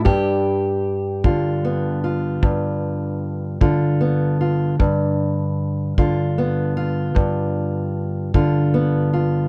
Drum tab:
BD |o--o--o--o--|o--o--o--o--|